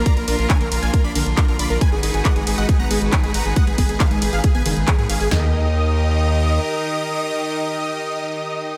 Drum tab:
RD |x-x-x-x-x-x-x-x-|x-x-x-x-x-x-x-x-|x-x-x-x-x-x-x-x-|----------------|
HH |xxoxxxoxx-oxxxox|x-oxxxoxx-oxxxox|xxoxxxoxxxoxxxoo|----------------|
CP |----x-------x---|----x-------x---|----x-------x---|----------------|
SD |----------------|----------------|----------------|o---------------|
FT |----------------|----------------|----------------|o---------------|
BD |o---o---o---o---|o---o---o---o---|o-o-o---o---o---|----------------|

RD |----------------|
HH |----------------|
CP |----------------|
SD |----------------|
FT |----------------|
BD |----------------|